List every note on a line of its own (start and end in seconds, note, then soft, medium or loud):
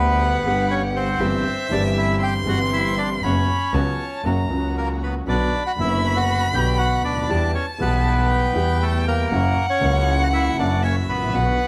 0.00 0.41 D2 loud
0.00 0.41 D2 medium
0.00 0.41 D3 medium
0.00 0.41 G3 medium
0.00 0.41 B3 medium
0.00 0.42 B3 medium
0.00 0.67 B3 medium
0.00 0.41 D4 medium
0.00 0.41 G4 medium
0.00 0.43 G4 medium
0.00 0.74 B4 loud
0.00 1.22 F#5 medium
0.43 1.17 G1 medium
0.43 1.17 G2 medium
0.43 1.16 D3 medium
0.43 1.16 G3 medium
0.43 1.16 B3 medium
0.43 1.17 B3 medium
0.43 1.16 D4 medium
0.43 1.16 G4 medium
0.43 1.18 G4 medium
0.71 0.82 C#4 medium
0.71 0.82 C#5 loud
0.96 1.67 C4 medium
0.96 1.74 C5 medium
1.19 1.41 G1 loud
1.19 1.41 G1 medium
1.19 1.41 G2 medium
1.19 1.41 E3 medium
1.19 1.41 G3 medium
1.19 1.41 C4 medium
1.19 1.42 C4 medium
1.19 1.41 E4 medium
1.19 1.41 G4 medium
1.19 1.42 G4 medium
1.19 2.20 E5 loud
1.69 2.43 G1 loud
1.69 2.43 G1 medium
1.69 2.43 G2 medium
1.69 2.42 E3 medium
1.69 2.43 G3 medium
1.69 2.42 C4 medium
1.69 2.44 C4 medium
1.69 1.83 D4 medium
1.69 2.42 E4 medium
1.69 2.42 G4 medium
1.69 1.83 D5 medium
1.74 2.44 G4 medium
1.97 2.20 E4 medium
1.97 2.23 E5 medium
2.21 2.34 G4 medium
2.21 2.34 G5 medium
2.21 3.24 C6 loud
2.45 3.19 G1 medium
2.45 3.19 G2 medium
2.45 3.18 E3 medium
2.45 3.19 G3 medium
2.45 3.18 C4 medium
2.45 3.19 C4 medium
2.45 3.19 E4 medium
2.45 2.59 F#4 medium
2.45 3.19 G4 medium
2.45 3.20 G4 medium
2.45 2.60 F#5 medium
2.72 2.96 E4 medium
2.72 2.99 E5 medium
2.98 3.09 D4 medium
2.98 3.09 D5 medium
3.22 3.44 F#1 medium
3.22 3.44 F#2 medium
3.22 3.44 C#3 medium
3.22 3.45 F#3 medium
3.22 3.44 B3 medium
3.22 3.45 B3 medium
3.22 3.44 C#4 medium
3.22 4.21 C#4 medium
3.22 3.44 F#4 medium
3.22 3.45 F#4 medium
3.22 4.22 C#5 medium
3.22 3.76 B5 medium
3.73 3.95 C#2 loud
3.73 3.95 C#2 medium
3.73 3.95 C#3 medium
3.73 3.95 F#3 medium
3.73 3.95 B3 medium
3.73 3.95 C#4 medium
3.73 3.95 F#4 medium
3.73 4.27 A5 medium
4.24 4.46 F#1 medium
4.24 4.46 F#2 medium
4.24 4.46 C#3 medium
4.24 4.46 F#3 medium
4.24 4.46 A#3 medium
4.24 4.46 C#4 medium
4.24 4.46 F#4 medium
4.24 4.47 F#4 medium
4.24 5.02 A#5 medium
4.50 5.23 C#2 medium
4.50 5.23 C#3 medium
4.50 5.23 F#3 medium
4.50 5.23 A#3 medium
4.50 5.24 A#3 medium
4.50 5.23 C#4 medium
4.50 5.23 F#4 medium
4.50 5.24 F#4 medium
4.77 4.89 A#3 medium
4.77 4.89 A#4 medium
5.03 5.15 B3 medium
5.03 5.14 B4 medium
5.26 5.48 B1 medium
5.26 5.49 B1 medium
5.26 5.48 B2 medium
5.26 5.48 D3 medium
5.26 5.49 F#3 medium
5.26 5.48 B3 medium
5.26 5.49 B3 medium
5.26 5.48 D4 medium
5.26 5.64 D4 medium
5.26 5.48 F#4 medium
5.26 5.49 F#4 medium
5.26 5.63 D5 medium
5.26 7.32 B5 loud
5.66 5.72 F#4 medium
5.66 5.72 F#5 medium
5.76 6.50 F#1 loud
5.76 6.50 F#1 medium
5.76 6.51 F#2 medium
5.76 6.49 D3 medium
5.76 6.50 F#3 medium
5.76 6.50 B3 medium
5.76 6.51 B3 medium
5.76 6.50 D4 medium
5.76 6.50 F#4 medium
5.80 6.15 E4 medium
5.80 6.51 F#4 medium
5.80 6.18 E5 medium
6.17 6.52 F#4 medium
6.17 6.55 F#5 medium
6.52 7.04 B1 medium
6.52 7.26 B1 medium
6.52 7.26 B2 medium
6.52 7.25 D3 medium
6.52 7.26 F#3 medium
6.52 7.26 B3 medium
6.52 7.26 D4 medium
6.52 7.26 F#4 medium
6.52 7.27 F#4 medium
6.52 6.78 G4 medium
6.52 6.78 G5 medium
6.78 7.02 F#4 medium
6.78 7.03 F#5 loud
7.04 7.29 D2 medium
7.04 7.51 D4 medium
7.04 7.51 D5 medium
7.12 7.18 C#2 soft
7.17 7.23 D2 soft
7.23 7.29 D#2 medium
7.29 7.51 E2 medium
7.29 7.51 E3 medium
7.29 7.51 G3 medium
7.29 7.50 B3 medium
7.29 7.51 B3 medium
7.29 7.51 E4 medium
7.29 7.51 G4 medium
7.29 8.29 A5 loud
7.54 7.66 C#4 medium
7.54 7.66 C#5 medium
7.78 8.52 B1 medium
7.78 8.52 B1 loud
7.78 8.52 B2 medium
7.78 8.51 E3 medium
7.78 8.51 G3 medium
7.78 8.52 B3 medium
7.78 8.78 B3 medium
7.78 8.52 E4 medium
7.78 8.52 G4 medium
7.78 8.53 G4 medium
7.78 8.85 B4 medium
8.30 9.27 G5 medium
8.53 9.27 E2 medium
8.53 8.54 E3 medium
8.53 9.28 E3 medium
8.53 9.27 G3 medium
8.53 9.27 B3 medium
8.53 9.28 B3 medium
8.53 9.28 E4 medium
8.53 9.28 G4 medium
8.82 9.05 A3 medium
8.82 9.05 A4 medium
9.07 9.66 A#3 medium
9.07 9.66 A#4 medium
9.30 9.52 F#1 loud
9.30 9.53 F#2 medium
9.30 9.53 C#3 medium
9.30 9.53 F#3 medium
9.30 9.52 A#3 medium
9.30 9.53 A#3 medium
9.30 9.52 E4 medium
9.30 9.53 E4 medium
9.30 9.52 F#4 medium
9.30 10.84 F#5 loud
9.70 10.17 C#4 medium
9.70 10.22 C#5 medium
9.79 10.54 C#2 medium
9.79 10.54 C#2 loud
9.79 10.54 C#3 medium
9.79 10.54 F#3 medium
9.79 10.54 A#3 medium
9.79 10.54 E4 medium
9.79 10.55 E4 medium
9.79 10.54 F#4 medium
10.22 10.28 F#4 medium
10.22 10.28 F#5 medium
10.33 10.57 E4 medium
10.33 10.57 E5 medium
10.56 11.08 F#1 medium
10.56 11.31 F#2 medium
10.56 11.30 C#3 medium
10.56 11.31 F#3 medium
10.56 11.30 A#3 medium
10.56 11.31 A#3 medium
10.56 10.83 D4 medium
10.56 11.31 E4 medium
10.56 11.31 F#4 medium
10.56 10.83 D5 medium
10.82 10.96 C#4 medium
10.82 10.96 C#5 medium
10.82 11.36 E5 medium
11.08 11.33 A1 medium
11.08 11.68 B3 medium
11.08 11.68 B4 medium
11.15 11.22 G#1 soft
11.21 11.28 A1 medium
11.27 11.34 A#1 medium
11.33 11.55 B1 medium
11.33 11.56 B1 medium
11.33 11.55 B2 medium
11.33 11.55 D3 medium
11.33 11.55 F#3 medium
11.33 11.55 B3 medium
11.33 11.56 B3 medium
11.33 11.56 D4 medium
11.33 11.55 F#4 medium
11.33 11.56 F#4 medium
11.33 11.68 F#5 medium